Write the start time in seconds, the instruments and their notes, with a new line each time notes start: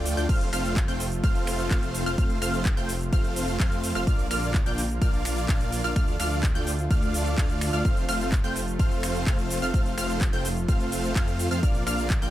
Already playing: detuned saw bass D2, analog synth pad D3 F3 A3 F4, supersaw synth A3 D4 F4 D5 G5, synth pluck G6
0.06 open hi-hat, cabasa
0.17 detuned saw bass D2, supersaw synth A3 D4 F4 D5 G5, synth pluck G6, closed hi-hat, cabasa
0.29 detuned saw bass F1, analog synth pad C3, supersaw synth A3 C4 F4 C5 F5, synth pluck F6, kick, closed hi-hat, crash, cabasa
0.41 closed hi-hat, cabasa
0.53 detuned saw bass F1, supersaw synth A3 C4 F4 C5 F5, synth pluck F6, finger snap, open hi-hat, cabasa
0.65 closed hi-hat, cabasa
0.76 kick, clap, closed hi-hat, cabasa
0.88 detuned saw bass F1, supersaw synth A3 C4 F4 C5 G5, synth pluck G6, closed hi-hat, cabasa
1.00 open hi-hat, cabasa
1.12 closed hi-hat, cabasa
1.23 detuned saw bass F1, supersaw synth A3 C4 F4 C5 F5, synth pluck F6, kick, closed hi-hat, cabasa
1.35 closed hi-hat, cabasa
1.47 finger snap, open hi-hat, cabasa
1.59 closed hi-hat, cabasa
1.71 detuned saw bass F1, supersaw synth A3 C4 F4 C5 F5, synth pluck F6, kick, clap, closed hi-hat, cabasa
1.83 closed hi-hat, cabasa
1.94 open hi-hat, cabasa
2.06 detuned saw bass F1, supersaw synth A3 C4 F4 C5 F5, synth pluck F6, closed hi-hat, cabasa
2.18 detuned saw bass F1, supersaw synth A3 C4 F4 C5 F5, synth pluck F6, kick, closed hi-hat, cabasa
2.30 closed hi-hat, cabasa
2.42 detuned saw bass F1, supersaw synth A3 C4 F4 C5 F5, synth pluck F6, finger snap, open hi-hat, cabasa
2.54 closed hi-hat, cabasa
2.65 kick, clap, closed hi-hat, cabasa
2.77 detuned saw bass F1, supersaw synth A3 C4 F4 C5 G5, synth pluck G6, closed hi-hat, cabasa
2.89 open hi-hat, cabasa
3.01 closed hi-hat, cabasa
3.13 detuned saw bass F1, supersaw synth A3 C4 F4 C5 F5, synth pluck F6, kick, closed hi-hat, cabasa
3.24 closed hi-hat, cabasa
3.36 open hi-hat, cabasa
3.48 closed hi-hat, cabasa
3.60 detuned saw bass F2, supersaw synth A3 C4 F4 C5 F5, synth pluck F6, kick, clap, closed hi-hat, cabasa
3.72 closed hi-hat, cabasa
3.84 open hi-hat, cabasa
3.95 detuned saw bass F1, supersaw synth A3 C4 F4 C5 F5, synth pluck F6, closed hi-hat, cabasa
4.07 detuned saw bass A#1, analog synth pad D3 A#3 F4, supersaw synth A#3 D4 F4 D5 F5, synth pluck F6, kick, closed hi-hat, cabasa
4.19 closed hi-hat, cabasa
4.31 detuned saw bass A#1, supersaw synth A#3 D4 F4 D5 F5, synth pluck F6, finger snap, open hi-hat, cabasa
4.43 cabasa
4.54 kick, clap, closed hi-hat, cabasa
4.66 detuned saw bass A#1, supersaw synth A#3 D4 F4 D5 G5, synth pluck G6, closed hi-hat, cabasa
4.78 open hi-hat, cabasa
4.90 closed hi-hat, cabasa
5.01 detuned saw bass A#1, supersaw synth A#3 D4 F4 D5 F5, synth pluck F6, kick, closed hi-hat, cabasa
5.13 closed hi-hat, cabasa
5.25 finger snap, open hi-hat, cabasa
5.37 closed hi-hat, cabasa
5.49 detuned saw bass A#1, supersaw synth A#3 D4 F4 D5 F5, synth pluck F6, kick, clap, closed hi-hat, cabasa
5.61 closed hi-hat, cabasa
5.72 open hi-hat, cabasa
5.84 detuned saw bass A#1, supersaw synth A#3 D4 F4 D5 F5, synth pluck F6, closed hi-hat, cabasa
5.96 detuned saw bass D2, analog synth pad F3 A3, supersaw synth A3 D4 F4 D5 F5, synth pluck F6, finger snap, kick, closed hi-hat, cabasa
6.08 closed hi-hat, cabasa
6.20 detuned saw bass D2, supersaw synth A3 D4 F4 D5 F5, synth pluck F6, finger snap, open hi-hat, cabasa
6.31 closed hi-hat, cabasa
6.43 kick, clap, closed hi-hat, cabasa
6.55 detuned saw bass D2, supersaw synth A3 D4 F4 D5 G5, synth pluck G6, closed hi-hat, cabasa
6.67 open hi-hat, cabasa
6.79 closed hi-hat, cabasa
6.91 detuned saw bass D2, supersaw synth A3 D4 F4 D5 F5, synth pluck F6, kick, closed hi-hat, cabasa
7.02 closed hi-hat, cabasa
7.14 open hi-hat, cabasa
7.26 closed hi-hat, cabasa
7.38 detuned saw bass D2, supersaw synth A3 D4 F4 D5 F5, synth pluck F6, kick, clap, closed hi-hat, cabasa
7.50 closed hi-hat, cabasa
7.61 finger snap, open hi-hat, cabasa
7.73 detuned saw bass D2, supersaw synth A3 D4 F4 D5 F5, synth pluck F6, closed hi-hat, cabasa
7.85 detuned saw bass F1, analog synth pad C3, supersaw synth A3 C4 F4 C5 F5, synth pluck F6, kick, closed hi-hat, cabasa
7.97 closed hi-hat, cabasa
8.08 detuned saw bass F1, supersaw synth A3 C4 F4 C5 F5, synth pluck F6, finger snap, open hi-hat, cabasa
8.20 closed hi-hat, cabasa
8.32 kick, clap, closed hi-hat, cabasa
8.44 detuned saw bass F1, supersaw synth A3 C4 F4 C5 G5, synth pluck G6, closed hi-hat, cabasa
8.56 open hi-hat, cabasa
8.68 closed hi-hat, cabasa
8.79 detuned saw bass F1, supersaw synth A3 C4 F4 C5 F5, synth pluck F6, kick, closed hi-hat, cabasa
8.91 closed hi-hat, cabasa
9.03 finger snap, open hi-hat, cabasa
9.15 closed hi-hat, cabasa
9.27 detuned saw bass F1, supersaw synth A3 C4 F4 C5 F5, synth pluck F6, kick, clap, closed hi-hat, cabasa
9.39 closed hi-hat, cabasa
9.50 open hi-hat, cabasa
9.62 detuned saw bass F1, supersaw synth A3 C4 F4 C5 F5, synth pluck F6, cabasa
9.74 detuned saw bass F1, supersaw synth A3 C4 F4 C5 F5, synth pluck F6, kick, closed hi-hat, cabasa
9.86 closed hi-hat, cabasa
9.97 detuned saw bass F1, supersaw synth A3 C4 F4 C5 F5, synth pluck F6, finger snap, open hi-hat, cabasa
10.09 closed hi-hat, cabasa
10.21 kick, clap, closed hi-hat, cabasa
10.33 detuned saw bass F1, supersaw synth A3 C4 F4 C5 G5, synth pluck G6, closed hi-hat, cabasa
10.45 open hi-hat, cabasa
10.57 closed hi-hat, cabasa
10.68 detuned saw bass F1, supersaw synth A3 C4 F4 C5 F5, synth pluck F6, kick, closed hi-hat, cabasa
10.80 closed hi-hat, cabasa
10.92 open hi-hat, cabasa
11.04 closed hi-hat, cabasa
11.16 detuned saw bass F2, supersaw synth A3 C4 F4 C5 F5, synth pluck F6, kick, clap, closed hi-hat, cabasa
11.28 closed hi-hat, cabasa
11.39 open hi-hat, cabasa
11.51 detuned saw bass F2, supersaw synth A3 C4 F4 C5 F5, synth pluck F6, closed hi-hat, cabasa
11.63 detuned saw bass A#1, analog synth pad D3 A#3 F4, supersaw synth A#3 D4 F4 D5 F5, synth pluck F6, kick, closed hi-hat, cabasa
11.75 closed hi-hat, cabasa
11.86 detuned saw bass A#1, supersaw synth A#3 D4 F4 D5 F5, synth pluck F6, finger snap, open hi-hat, cabasa
11.98 closed hi-hat, cabasa
12.10 kick, clap, closed hi-hat, cabasa
12.22 detuned saw bass A#1, supersaw synth A#3 D4 F4 D5 G5, synth pluck G6, closed hi-hat, cabasa